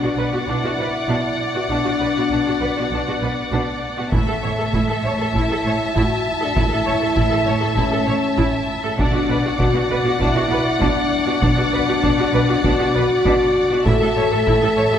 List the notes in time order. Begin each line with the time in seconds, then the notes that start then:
Already playing: D4 D5 F#5
0.03 B2 F#4
0.17 B1 B2 B4
0.33 B2 F#4
0.47 B1 B2 D4 E4
0.63 B2 F#4
0.78 B1 B2 B4
1.08 B1 B2 D4
1.55 B2 F#4
1.69 B1 B2 D4
1.85 B2 F#4
2.00 B1 B2 B4
2.16 B2 F#4
2.30 B1 B2 D4
2.47 B2 F#4
2.60 B1 B2 B4
2.76 B2 F#4
2.91 B1 B2 B3 D4
3.07 B2 F#4
3.21 B1 B2 B4
3.51 B1 B2 D4
3.97 B2 F#4
4.12 A1 A2 A3 E4 E5 A5, taiko
4.28 A2 A4
4.43 A1 A2 C#5
4.58 A2 A4
4.73 A1 A2 E4, taiko
4.88 A2 A4
5.03 A1 A2 C#5
5.19 A2 A4
5.34 A1 A2 E4, taiko
5.50 A2 A4
5.65 A1 A2 C#5
5.95 A1 A2 E4 F#4, taiko
6.26 E4
6.41 A2 D4 A4
6.55 A1 A2 E4, taiko
6.71 A2 A4
6.86 A1 A2 C#5
7.01 A2 A4
7.16 A1 A2 E4, taiko
7.31 A2 A4
7.46 A1 A2 C#5
7.62 A2 A4
7.76 A1 A2 C#4 E4, taiko
7.92 A2 A4
8.07 A1 A2 C#5
8.37 A1 A2 E4, taiko
8.82 A2 A4
8.98 B1 B2 D4 D5 F#5, taiko
9.13 B2 F#4
9.29 B1 B2 B4
9.44 B2 F#4
9.59 B1 B2 D4 F#4, taiko
9.74 B2 F#4
9.89 B1 B2 B4
10.04 B2 F#4
10.19 B1 B2 D4 E4, taiko
10.35 B2 F#4
10.49 B1 B2 B4
10.81 B1 B2 D4, taiko
11.26 B2 F#4
11.41 B1 B2 D4, taiko
11.57 B2 F#4
11.72 B1 B2 B4
11.87 B2 F#4
12.03 B1 B2 D4, taiko
12.19 B2 F#4
12.33 B1 B2 B4
12.49 B2 F#4
12.63 B1 B2 D4 F#4, taiko
12.79 B2 F#4
12.95 B1 B2 B4
13.25 B1 B2 D4, taiko
13.71 B2 F#4
13.85 A1 A2 E4 A4 E5 A5, taiko
14.01 A2 A4
14.16 A1 A2 C#5
14.32 A2 A4
14.47 A1 A2 E4, taiko
14.62 A2 A4
14.77 A1 A2 C#5
14.92 A2 A4